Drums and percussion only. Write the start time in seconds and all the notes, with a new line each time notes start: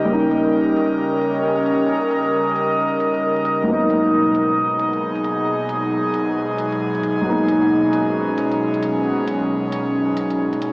0.31 closed hi-hat
0.77 closed hi-hat
1.22 closed hi-hat
1.35 closed hi-hat
1.58 closed hi-hat
1.66 closed hi-hat
2.11 closed hi-hat
2.56 closed hi-hat
3.00 closed hi-hat
3.14 closed hi-hat
3.36 closed hi-hat
3.45 closed hi-hat
3.90 closed hi-hat
4.35 closed hi-hat
4.79 closed hi-hat
4.93 closed hi-hat
5.15 closed hi-hat
5.24 closed hi-hat
5.69 closed hi-hat
6.14 closed hi-hat
6.58 closed hi-hat
6.72 closed hi-hat
6.95 closed hi-hat
7.03 closed hi-hat
7.48 closed hi-hat
7.93 closed hi-hat
8.38 closed hi-hat
8.52 closed hi-hat
8.74 closed hi-hat
8.83 closed hi-hat
9.28 closed hi-hat
9.72 closed hi-hat
10.17 closed hi-hat
10.30 closed hi-hat
10.53 closed hi-hat
10.62 closed hi-hat